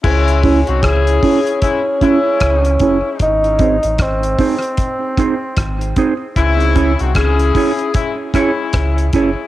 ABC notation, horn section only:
X:1
M:4/4
L:1/16
Q:"Swing 16ths" 1/4=76
K:C#m
V:1 name="Horn section"
[G,CE]3 [^B,DF] [CEG]4 [G,CE] z [G,CE]4 z2 | z16 | [G,CE]3 [^B,DF] [CEG]4 [G,CE] z [G,CE]4 z2 |]